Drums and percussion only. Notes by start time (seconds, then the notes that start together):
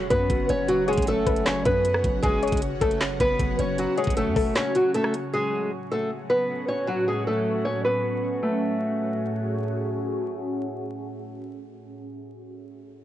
0.10 kick, closed hi-hat
0.30 kick, closed hi-hat
0.49 closed hi-hat
0.68 closed hi-hat
0.88 closed hi-hat
0.93 closed hi-hat
0.97 kick, closed hi-hat
1.02 closed hi-hat
1.07 closed hi-hat
1.27 kick, closed hi-hat
1.36 closed hi-hat
1.46 snare, clap, closed hi-hat
1.65 kick, closed hi-hat
1.85 closed hi-hat
1.94 cross-stick
2.04 kick, closed hi-hat
2.23 kick, closed hi-hat
2.43 closed hi-hat
2.48 closed hi-hat
2.52 kick, closed hi-hat
2.57 closed hi-hat
2.62 closed hi-hat
2.81 kick, closed hi-hat
2.91 closed hi-hat
3.01 snare, clap, closed hi-hat
3.20 kick, closed hi-hat
3.39 kick, closed hi-hat
3.59 closed hi-hat
3.78 closed hi-hat
3.98 closed hi-hat
4.04 kick, closed hi-hat
4.10 closed hi-hat
4.17 closed hi-hat
4.36 kick, open hi-hat
4.56 snare, clap, closed hi-hat
4.75 closed hi-hat
4.94 closed hi-hat
5.04 cross-stick
5.14 closed hi-hat